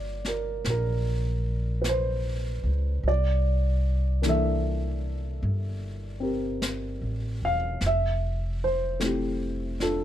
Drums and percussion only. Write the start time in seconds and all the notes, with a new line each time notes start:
0.25 snare
0.64 brush sweep, snare
1.84 brush sweep, snare, hi-hat pedal
3.04 brush sweep
4.23 brush sweep, snare, hi-hat pedal
5.42 brush sweep
6.62 brush sweep, snare, hi-hat pedal
7.81 brush sweep, snare
9.00 brush sweep, snare, hi-hat pedal
9.80 snare